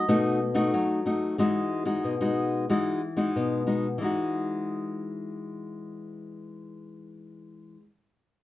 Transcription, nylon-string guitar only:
0.08 0.70 B2 medium
0.08 0.39 A3 medium
0.08 0.39 D#4 medium
0.08 0.39 F#4 medium
0.54 1.00 A3 medium
0.54 1.00 D#4 medium
0.54 1.00 F#4 medium
0.74 1.36 F#3 medium
1.06 1.36 A3 medium
1.06 1.36 D#4 soft
1.06 1.36 F#4 medium
1.38 2.01 E3 medium
1.38 1.83 G#3 medium
1.38 1.83 D#4 medium
1.38 1.83 F#4 medium
1.85 2.14 G#3 medium
1.85 2.14 D#4 medium
1.85 2.14 F#4 medium
2.04 2.66 B2 medium
2.21 2.64 G#3 medium
2.21 2.65 D#4 medium
2.21 2.65 F#4 medium
2.69 3.32 E3 medium
2.69 3.00 G#3 medium
2.69 3.00 D#4 medium
2.69 3.01 F#4 medium
3.17 3.61 G#3 medium
3.17 3.62 D#4 medium
3.17 3.62 F#4 medium
3.36 3.97 B2 medium
3.67 3.86 G#3 soft
3.67 3.87 D#4 soft
3.67 3.87 F#4 soft
3.98 7.77 E3 medium
3.98 7.80 G#3 medium
4.03 7.81 D#4 medium
4.03 7.83 F#4 medium

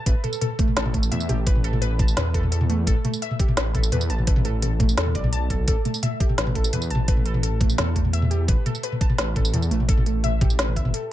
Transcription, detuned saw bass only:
0.06 0.14 A1 loud
0.76 1.10 A1 medium
1.11 1.31 E2 medium
1.29 2.16 A1 medium
2.17 2.86 E2 medium
2.87 2.95 A1 medium
3.57 3.91 A1 medium
3.92 4.11 E2 medium
4.10 4.96 A1 medium
4.97 5.16 E2 medium
5.15 5.67 B1 medium
5.68 5.76 A1 medium
6.38 6.72 A1 medium
6.73 6.92 E2 medium
6.91 7.77 A1 medium
7.78 8.47 E2 medium
8.48 8.56 A1 loud
9.19 9.53 A1 medium
9.54 9.73 E2 medium
9.71 10.78 A1 medium
10.76 10.93 G1 medium

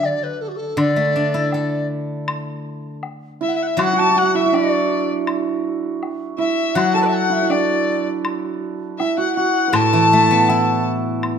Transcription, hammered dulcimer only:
3.41 4.34 E4 medium
3.78 3.86 F#4 medium
3.87 3.93 F#4 medium
3.93 4.00 F#4 medium
4.01 4.09 F#4 medium
4.10 4.16 F#4 medium
4.16 4.23 F#4 medium
4.23 6.75 F#4 medium
4.35 4.45 E4 medium
4.46 6.38 E4 soft
4.53 7.49 D4 medium
6.38 7.29 E4 medium
6.76 9.17 F#4 medium
6.94 9.72 A4 medium
7.30 7.42 E4 medium
7.42 9.00 E4 soft
7.49 11.23 D4 medium
9.00 11.39 E4 medium
9.18 9.36 F#4 medium
9.37 11.39 F#4 medium
9.68 11.39 B4 medium
9.72 11.39 A4 medium

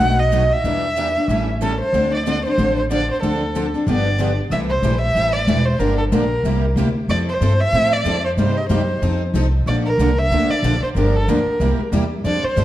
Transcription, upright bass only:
0.00 0.51 B1 medium
0.64 1.15 E2 medium
1.28 1.80 A1 medium
1.93 2.44 D2 medium
2.58 3.09 A1 medium
3.22 3.74 D2 medium
3.87 4.38 G1 medium
4.50 4.82 C2 medium
4.82 5.14 A#1 medium
5.15 5.46 A1 medium
5.47 5.79 E1 medium
5.79 6.11 G1 medium
6.12 6.43 A#1 medium
6.43 6.75 C2 medium
6.76 7.07 D2 medium
7.08 7.40 F2 medium
7.41 7.72 G2 medium
7.73 8.04 A2 medium
8.04 8.36 F2 medium
8.37 8.68 G2 medium
8.69 9.01 F#2 medium
9.02 9.33 F2 medium
9.34 9.65 C2 medium
9.66 9.97 A#1 medium
9.98 10.29 C2 medium
10.30 10.48 D2 medium
10.50 muted upright bass stroke soft
10.62 10.80 A#1 medium
10.82 muted upright bass stroke soft
10.95 11.26 G1 medium
11.27 11.45 D2 medium
11.46 muted upright bass stroke soft
11.60 11.77 C2 medium
11.79 muted upright bass stroke soft
11.92 12.23 E2 medium
12.24 12.42 F2 medium
12.43 muted upright bass stroke soft
12.57 12.64 G2 medium

